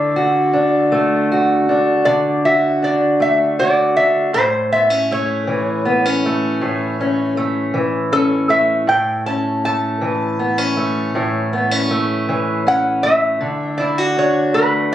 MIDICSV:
0, 0, Header, 1, 3, 480
1, 0, Start_track
1, 0, Key_signature, 3, "major"
1, 0, Tempo, 756620
1, 2748, Time_signature, 12, 3, 24, 8
1, 9483, End_track
2, 0, Start_track
2, 0, Title_t, "Resonator guitar played with a steel bar"
2, 0, Program_c, 0, 25
2, 0, Note_on_c, 0, 69, 102
2, 796, Note_off_c, 0, 69, 0
2, 1302, Note_on_c, 0, 74, 96
2, 1538, Note_off_c, 0, 74, 0
2, 1556, Note_on_c, 0, 76, 82
2, 1784, Note_off_c, 0, 76, 0
2, 1802, Note_on_c, 0, 74, 89
2, 2028, Note_off_c, 0, 74, 0
2, 2042, Note_on_c, 0, 76, 86
2, 2268, Note_off_c, 0, 76, 0
2, 2281, Note_on_c, 0, 74, 90
2, 2507, Note_off_c, 0, 74, 0
2, 2516, Note_on_c, 0, 76, 90
2, 2745, Note_off_c, 0, 76, 0
2, 2754, Note_on_c, 0, 72, 117
2, 2984, Note_off_c, 0, 72, 0
2, 2997, Note_on_c, 0, 76, 89
2, 3226, Note_off_c, 0, 76, 0
2, 3250, Note_on_c, 0, 73, 85
2, 4655, Note_off_c, 0, 73, 0
2, 5156, Note_on_c, 0, 69, 89
2, 5385, Note_off_c, 0, 69, 0
2, 5393, Note_on_c, 0, 76, 91
2, 5624, Note_off_c, 0, 76, 0
2, 5637, Note_on_c, 0, 79, 94
2, 5866, Note_off_c, 0, 79, 0
2, 5877, Note_on_c, 0, 81, 87
2, 6106, Note_off_c, 0, 81, 0
2, 6122, Note_on_c, 0, 81, 88
2, 7050, Note_off_c, 0, 81, 0
2, 8044, Note_on_c, 0, 78, 90
2, 8267, Note_on_c, 0, 76, 98
2, 8268, Note_off_c, 0, 78, 0
2, 8732, Note_off_c, 0, 76, 0
2, 8740, Note_on_c, 0, 74, 82
2, 8975, Note_off_c, 0, 74, 0
2, 8999, Note_on_c, 0, 73, 90
2, 9224, Note_off_c, 0, 73, 0
2, 9226, Note_on_c, 0, 71, 96
2, 9458, Note_off_c, 0, 71, 0
2, 9483, End_track
3, 0, Start_track
3, 0, Title_t, "Steel-string acoustic guitar"
3, 0, Program_c, 1, 25
3, 0, Note_on_c, 1, 50, 73
3, 0, Note_on_c, 1, 57, 57
3, 102, Note_on_c, 1, 66, 62
3, 339, Note_on_c, 1, 62, 57
3, 580, Note_off_c, 1, 57, 0
3, 583, Note_on_c, 1, 57, 70
3, 825, Note_off_c, 1, 66, 0
3, 835, Note_on_c, 1, 66, 75
3, 1063, Note_off_c, 1, 62, 0
3, 1072, Note_on_c, 1, 62, 62
3, 1295, Note_off_c, 1, 50, 0
3, 1303, Note_on_c, 1, 50, 81
3, 1548, Note_off_c, 1, 66, 0
3, 1555, Note_on_c, 1, 66, 68
3, 1784, Note_off_c, 1, 62, 0
3, 1791, Note_on_c, 1, 62, 54
3, 2027, Note_off_c, 1, 57, 0
3, 2030, Note_on_c, 1, 57, 62
3, 2272, Note_off_c, 1, 66, 0
3, 2279, Note_on_c, 1, 66, 76
3, 2510, Note_off_c, 1, 62, 0
3, 2518, Note_on_c, 1, 62, 58
3, 2724, Note_off_c, 1, 62, 0
3, 2725, Note_off_c, 1, 66, 0
3, 2746, Note_off_c, 1, 50, 0
3, 2749, Note_on_c, 1, 45, 76
3, 2996, Note_on_c, 1, 59, 51
3, 3015, Note_off_c, 1, 57, 0
3, 3109, Note_off_c, 1, 59, 0
3, 3109, Note_on_c, 1, 61, 54
3, 3244, Note_on_c, 1, 57, 62
3, 3472, Note_on_c, 1, 52, 71
3, 3709, Note_off_c, 1, 61, 0
3, 3714, Note_on_c, 1, 59, 68
3, 3841, Note_off_c, 1, 59, 0
3, 3841, Note_on_c, 1, 61, 48
3, 3966, Note_off_c, 1, 57, 0
3, 3968, Note_on_c, 1, 57, 64
3, 4193, Note_off_c, 1, 45, 0
3, 4196, Note_on_c, 1, 45, 76
3, 4435, Note_off_c, 1, 61, 0
3, 4444, Note_on_c, 1, 61, 59
3, 4674, Note_off_c, 1, 57, 0
3, 4677, Note_on_c, 1, 57, 60
3, 4901, Note_off_c, 1, 52, 0
3, 4909, Note_on_c, 1, 52, 65
3, 5146, Note_off_c, 1, 61, 0
3, 5154, Note_on_c, 1, 61, 61
3, 5385, Note_off_c, 1, 57, 0
3, 5387, Note_on_c, 1, 57, 56
3, 5600, Note_off_c, 1, 52, 0
3, 5603, Note_off_c, 1, 61, 0
3, 5621, Note_off_c, 1, 45, 0
3, 5629, Note_on_c, 1, 45, 74
3, 5876, Note_on_c, 1, 61, 57
3, 6120, Note_off_c, 1, 57, 0
3, 6122, Note_on_c, 1, 57, 49
3, 6352, Note_on_c, 1, 52, 68
3, 6590, Note_off_c, 1, 61, 0
3, 6593, Note_on_c, 1, 59, 61
3, 6712, Note_off_c, 1, 59, 0
3, 6712, Note_on_c, 1, 61, 51
3, 6829, Note_off_c, 1, 57, 0
3, 6832, Note_on_c, 1, 57, 60
3, 7066, Note_off_c, 1, 45, 0
3, 7073, Note_on_c, 1, 45, 75
3, 7310, Note_off_c, 1, 61, 0
3, 7315, Note_on_c, 1, 59, 57
3, 7431, Note_off_c, 1, 59, 0
3, 7431, Note_on_c, 1, 61, 52
3, 7551, Note_off_c, 1, 57, 0
3, 7554, Note_on_c, 1, 57, 59
3, 7787, Note_off_c, 1, 52, 0
3, 7795, Note_on_c, 1, 52, 62
3, 8028, Note_off_c, 1, 61, 0
3, 8035, Note_on_c, 1, 61, 60
3, 8275, Note_off_c, 1, 57, 0
3, 8278, Note_on_c, 1, 57, 56
3, 8481, Note_off_c, 1, 52, 0
3, 8482, Note_off_c, 1, 61, 0
3, 8504, Note_on_c, 1, 50, 74
3, 8509, Note_off_c, 1, 45, 0
3, 8752, Note_on_c, 1, 64, 61
3, 8869, Note_off_c, 1, 64, 0
3, 8869, Note_on_c, 1, 66, 55
3, 8988, Note_on_c, 1, 62, 50
3, 9222, Note_off_c, 1, 57, 0
3, 9225, Note_on_c, 1, 57, 61
3, 9466, Note_off_c, 1, 66, 0
3, 9483, Note_off_c, 1, 50, 0
3, 9483, Note_off_c, 1, 57, 0
3, 9483, Note_off_c, 1, 62, 0
3, 9483, End_track
0, 0, End_of_file